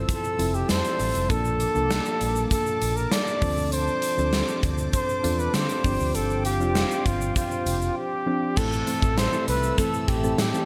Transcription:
Already playing: synth keys F3 C4 E4 A4, analog synth pad A4 C5 A5 E6
0.09 flugelhorn A4, kick, closed hi-hat, shaker
0.24 shaker
0.38 fretless electric bass F1, synth keys F3 C4 E4 A4, closed hi-hat, shaker
0.54 flugelhorn G4, shaker
0.69 fretless electric bass F2, flugelhorn C5, snare, closed hi-hat, shaker
0.85 closed hi-hat, shaker
0.99 fretless electric bass A1, open hi-hat, shaker
1.15 fretless electric bass F1, closed hi-hat, shaker
1.29 fretless electric bass A#1, synth keys F3 A#3 D4 A4, analog synth pad A#3 D6, flugelhorn A4, kick, closed hi-hat, shaker
1.45 shaker
1.60 closed hi-hat, shaker
1.75 fretless electric bass C2, synth keys F3 A#3 D4 A4, shaker
1.90 snare, closed hi-hat, shaker
2.05 shaker
2.21 fretless electric bass A#1, closed hi-hat, shaker
2.36 shaker
2.51 flugelhorn A4, kick, closed hi-hat, shaker
2.66 shaker
2.82 fretless electric bass A#1, closed hi-hat, shaker
2.96 flugelhorn A#4, shaker
3.12 flugelhorn D5, snare, closed hi-hat, shaker
3.27 shaker
3.41 fretless electric bass D2, synth keys F3 C4 D4 A4, analog synth pad C5, kick, open hi-hat, shaker
3.57 shaker
3.72 flugelhorn C5, closed hi-hat, shaker
3.87 shaker
4.02 closed hi-hat, shaker
4.17 fretless electric bass D2, synth keys F3 C4 D4 A4, shaker
4.33 snare, closed hi-hat, shaker
4.48 shaker
4.63 fretless electric bass D2, kick, closed hi-hat, shaker
4.78 shaker
4.93 flugelhorn C5, kick, closed hi-hat, shaker
5.09 shaker
5.23 fretless electric bass E2, synth keys C4 D4 F4 A4, closed hi-hat, shaker
5.39 flugelhorn B4, shaker
5.54 fretless electric bass D3, flugelhorn C5, snare, closed hi-hat, shaker
5.69 closed hi-hat, shaker
5.84 fretless electric bass G1, synth keys F3 C4 D4 G4, analog synth pad F4 C5 G5, kick, open hi-hat, shaker
6.00 fretless electric bass D2, shaker
6.15 fretless electric bass G1, flugelhorn A4, closed hi-hat, shaker
6.30 shaker
6.45 flugelhorn G4, closed hi-hat, shaker
6.60 fretless electric bass F1, synth keys F3 C4 D4 F4, shaker
6.67 synth keys G4
6.75 snare, closed hi-hat, shaker
6.91 shaker
7.06 fretless electric bass G1, flugelhorn F4, kick, closed hi-hat, shaker
7.21 shaker
7.36 flugelhorn F4, kick, closed hi-hat, shaker
7.51 shaker
7.66 fretless electric bass F1, closed hi-hat, shaker
7.82 shaker
7.97 flugelhorn G4
8.26 synth keys F3 C4 D4 G4
8.56 fretless electric bass A1, overdriven electric guitar A2 E3 A3, synth keys E3 A3 C4 A4, flugelhorn A4, analog synth pad A4 E5 A5 E6, kick, crash, shaker
8.72 shaker
8.87 synth keys E3 A3 C4 A4, closed hi-hat
9.02 fretless electric bass A1, kick, shaker
9.18 flugelhorn C5, snare, closed hi-hat, shaker
9.32 synth keys E3 A3 C4 A4, shaker
9.48 fretless electric bass C2, flugelhorn B4, closed hi-hat, shaker
9.63 shaker
9.77 overdriven electric guitar A2 E3 A3, synth keys E3 A3 C4 A4, flugelhorn A4, kick, closed hi-hat, shaker
9.94 shaker
10.08 fretless electric bass A1, overdriven electric guitar E3 A3, flugelhorn G4, kick, closed hi-hat
10.23 synth keys E3 A3 C4 A4, shaker
10.38 fretless electric bass A2, flugelhorn G4, snare, closed hi-hat, shaker
10.53 synth keys E3 A3 C4 A4, shaker

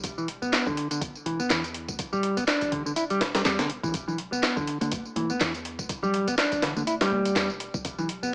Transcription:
0.04 808-style bass E1, kick, closed hi-hat, tambourine
0.18 clean electric guitar E3, tambourine
0.28 closed hi-hat
0.42 808-style bass E1, clean electric guitar B3, tambourine
0.53 snare, clap, closed hi-hat, tambourine
0.66 808-style bass A1, clean electric guitar D3, kick, tambourine
0.77 closed hi-hat
0.91 clean electric guitar D3, closed hi-hat, tambourine
1.01 808-style bass G1, kick, closed hi-hat, tambourine
1.15 tambourine
1.26 808-style bass E1, clean electric guitar E3, closed hi-hat
1.40 808-style bass E2, clean electric guitar B3, tambourine
1.50 808-style bass E2, clean electric guitar E3, snare, clap, closed hi-hat, tambourine
1.64 closed hi-hat, tambourine
1.74 closed hi-hat
1.88 808-style bass D2, kick, tambourine
1.99 808-style bass D1, kick, closed hi-hat, tambourine
2.13 808-style bass D1, clean electric guitar G3, tambourine
2.23 closed hi-hat
2.37 808-style bass E1, clean electric guitar B3, closed hi-hat, tambourine
2.47 clean electric guitar D4, snare, clap, closed hi-hat, tambourine
2.61 808-style bass A1, closed hi-hat, tambourine
2.72 clean electric guitar D3, kick, closed hi-hat
2.86 clean electric guitar D3, tambourine
2.96 808-style bass E1, clean electric guitar E4, closed hi-hat, tambourine
3.10 clean electric guitar G3, closed hi-hat, tambourine
3.21 808-style bass E1, snare, closed hi-hat
3.35 808-style bass E2, clean electric guitar G3, snare, closed hi-hat, tambourine
3.45 808-style bass E2, clean electric guitar G3, snare, clap, closed hi-hat, tambourine
3.59 808-style bass E1, clean electric guitar D3, snare, closed hi-hat, tambourine
3.70 closed hi-hat
3.83 808-style bass B1, clean electric guitar E3, kick, tambourine
3.94 808-style bass E1, kick, closed hi-hat, tambourine
4.08 clean electric guitar E3, tambourine, low conga
4.18 closed hi-hat
4.32 808-style bass E1, clean electric guitar B3, tambourine
4.43 snare, clap, closed hi-hat, tambourine
4.56 808-style bass A1, clean electric guitar D3, kick, tambourine
4.67 closed hi-hat
4.81 clean electric guitar D3, closed hi-hat, tambourine, high conga
4.92 808-style bass G1, kick, closed hi-hat, tambourine
5.05 tambourine
5.16 808-style bass E1, clean electric guitar E3, closed hi-hat, high conga
5.30 808-style bass E2, clean electric guitar B3, tambourine
5.40 808-style bass E2, clean electric guitar E3, snare, clap, closed hi-hat, tambourine
5.54 closed hi-hat, tambourine
5.65 closed hi-hat
5.79 808-style bass D2, kick, tambourine
5.89 808-style bass D1, kick, closed hi-hat, tambourine
6.02 808-style bass D1, clean electric guitar G3, tambourine, low conga
6.14 closed hi-hat
6.28 808-style bass E1, clean electric guitar B3, closed hi-hat, tambourine
6.38 clean electric guitar D4, snare, clap, closed hi-hat, tambourine
6.52 808-style bass A1, closed hi-hat, tambourine
6.62 clean electric guitar D3, snare, closed hi-hat
6.76 clean electric guitar D3, tambourine, high conga
6.87 808-style bass E1, clean electric guitar E4, closed hi-hat, tambourine
7.01 clean electric guitar G3, snare, closed hi-hat, tambourine
7.12 808-style bass E1, high conga
7.25 808-style bass E2, closed hi-hat, tambourine
7.36 808-style bass E2, snare, clap, closed hi-hat, tambourine
7.50 808-style bass E1, tambourine
7.60 closed hi-hat
7.74 808-style bass B1, kick, tambourine
7.85 808-style bass E1, kick, closed hi-hat, tambourine
7.99 clean electric guitar E3, tambourine, low conga
8.09 closed hi-hat
8.23 808-style bass E1, clean electric guitar B3, tambourine

